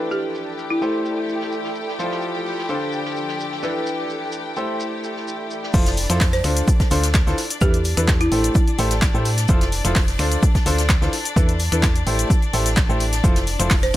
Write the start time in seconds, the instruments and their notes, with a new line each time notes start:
Already playing: grand piano E3 D4 E4 A4 B4, ambient pad E4 A4 D5 G5, string section G4 G5
0.11 marimba G4, shaker
0.30 ambient pad B5
0.35 shaker
0.58 shaker
0.70 marimba E4
0.82 grand piano A3 E4 G4 A4 C5, shaker
1.05 shaker
1.29 shaker
1.41 snare
1.52 shaker
1.64 snare
1.75 shaker
1.88 snare
1.99 grand piano F3 E4 F4 A4 C5, shaker
2.11 snare
2.22 shaker
2.34 closed hi-hat
2.46 open hi-hat
2.58 snare
2.69 grand piano D3 D4 F4 A4 C5, shaker
2.92 shaker
3.05 snare
3.16 shaker
3.28 snare
3.40 shaker
3.52 snare
3.63 grand piano E3 D4 E4 A4 B4, ambient pad E4, snare, shaker
3.86 shaker
4.05 ambient pad B5
4.10 shaker
4.32 shaker
4.56 grand piano A3 E4 G4 A4 C5, shaker
4.80 shaker
5.04 shaker
5.17 snare
5.28 shaker
5.50 shaker
5.63 snare
5.74 fm bass F1, grand piano F3 E4 F4 A4 C5, string section D4 D5, kick, crash, cabasa, shaker
5.86 snare, closed hi-hat, cabasa
5.97 open hi-hat, shaker
6.09 fm bass F2, grand piano F3 E4 F4 A4 C5, finger snap, closed hi-hat, cabasa
6.20 kick, snare, clap, open hi-hat, cabasa
6.33 marimba C5, snare, closed hi-hat, cabasa
6.44 fm bass D2, grand piano D3 D4 F4 A4 C5, finger snap, open hi-hat, shaker
6.57 closed hi-hat, cabasa
6.68 kick, cabasa, shaker
6.80 kick, snare, closed hi-hat, cabasa
6.91 fm bass D2, grand piano D3 D4 F4 A4 C5, open hi-hat, shaker
7.03 snare, closed hi-hat, cabasa
7.14 kick, snare, clap, cabasa, shaker
7.27 fm bass D2, grand piano E3 D4 F4 A4 C5, snare, cabasa
7.38 snare, open hi-hat, shaker
7.50 closed hi-hat, cabasa
7.61 fm bass E2, grand piano E3 D4 E4 A4 B4, marimba G4, kick, cabasa, shaker
7.74 closed hi-hat, cabasa
7.85 open hi-hat, shaker
7.97 fm bass E2, grand piano E3 D4 E4 A4 B4, finger snap, closed hi-hat, cabasa
8.08 kick, snare, clap, cabasa, shaker
8.21 marimba E4, closed hi-hat, cabasa
8.32 fm bass A1, grand piano A3 E4 G4 A4 C5, open hi-hat, shaker
8.44 closed hi-hat, cabasa
8.55 kick, cabasa, shaker
8.68 closed hi-hat, cabasa
8.79 fm bass A1, grand piano A3 E4 G4 A4 C5, open hi-hat, shaker
8.91 snare, closed hi-hat, cabasa
9.02 kick, snare, clap, cabasa, shaker
9.14 fm bass A2, grand piano A3 E4 G4 A4 C5, cabasa
9.25 open hi-hat, shaker
9.38 snare, closed hi-hat, cabasa
9.48 fm bass F1, grand piano F3 E4 F4 A4 C5, kick, cabasa, shaker
9.61 snare, closed hi-hat, cabasa
9.72 open hi-hat, shaker
9.85 fm bass F1, grand piano F3 E4 F4 A4 C5, finger snap, closed hi-hat, cabasa
9.96 kick, snare, clap, open hi-hat, cabasa
10.08 snare, closed hi-hat, cabasa
10.19 fm bass D2, grand piano D3 D4 F4 A4 C5, finger snap, open hi-hat, shaker
10.32 closed hi-hat, cabasa
10.43 kick, cabasa, shaker
10.55 kick, snare, closed hi-hat, cabasa
10.66 fm bass D2, grand piano D3 D4 F4 A4 C5, open hi-hat, shaker
10.78 snare, closed hi-hat, cabasa
10.89 kick, snare, clap, cabasa, shaker
11.02 fm bass D2, grand piano E3 D4 F4 A4 C5, snare, cabasa
11.13 snare, open hi-hat, shaker
11.25 closed hi-hat, cabasa
11.36 fm bass E2, grand piano E3 D4 E4 A4 B4, kick, cabasa, shaker
11.49 closed hi-hat, cabasa
11.59 open hi-hat, shaker
11.72 fm bass E2, grand piano E3 D4 E4 A4 B4, finger snap, closed hi-hat, cabasa
11.83 kick, snare, clap, cabasa, shaker
11.96 closed hi-hat, cabasa
12.07 fm bass A1, grand piano A3 E4 G4 A4 C5, open hi-hat, shaker
12.19 closed hi-hat, cabasa
12.30 kick, cabasa, shaker
12.42 closed hi-hat, cabasa
12.53 fm bass A1, grand piano A3 E4 G4 A4 C5, open hi-hat, shaker
12.66 snare, closed hi-hat, cabasa
12.77 kick, snare, clap, cabasa, shaker
12.89 fm bass A1, grand piano A3 E4 G4 A4 C5, cabasa
13.00 open hi-hat, shaker
13.12 snare, closed hi-hat, cabasa
13.24 fm bass F1, grand piano F3 E4 F4 A4 C5, kick, cabasa, shaker
13.36 snare, closed hi-hat, cabasa
13.47 open hi-hat, shaker
13.59 fm bass F1, grand piano F3 E4 F4 A4 C5, finger snap, closed hi-hat, cabasa
13.70 kick, snare, clap, open hi-hat, cabasa
13.83 marimba C5, snare, closed hi-hat, cabasa